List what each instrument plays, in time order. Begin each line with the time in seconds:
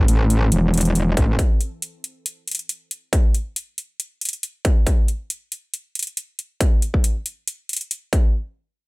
Already playing: analog synth pad E3 C4 A4
0.08 wobble bass A1, closed hi-hat
0.30 closed hi-hat
0.52 wobble bass E1, closed hi-hat
0.74 closed hi-hat
0.78 closed hi-hat
0.81 closed hi-hat
0.85 closed hi-hat
0.95 closed hi-hat
1.17 wobble bass A1, kick, closed hi-hat
1.39 kick, closed hi-hat
1.61 closed hi-hat
1.82 closed hi-hat
2.04 closed hi-hat
2.26 closed hi-hat
2.48 closed hi-hat
2.51 closed hi-hat
2.55 closed hi-hat
2.59 closed hi-hat
2.69 closed hi-hat
2.91 closed hi-hat
3.13 kick, closed hi-hat
3.34 closed hi-hat
3.56 closed hi-hat
3.78 closed hi-hat
4.00 closed hi-hat
4.21 closed hi-hat
4.25 closed hi-hat
4.29 closed hi-hat
4.33 closed hi-hat
4.43 closed hi-hat
4.65 kick, closed hi-hat
4.87 kick, closed hi-hat
5.08 closed hi-hat
5.30 closed hi-hat
5.52 closed hi-hat
5.74 closed hi-hat
5.95 closed hi-hat
5.99 closed hi-hat
6.03 closed hi-hat
6.17 closed hi-hat
6.39 closed hi-hat
6.61 kick, closed hi-hat
6.82 closed hi-hat
6.94 kick
7.04 closed hi-hat
7.26 closed hi-hat
7.47 closed hi-hat
7.69 closed hi-hat
7.73 closed hi-hat
7.76 closed hi-hat
7.81 closed hi-hat
7.91 closed hi-hat
8.13 kick, closed hi-hat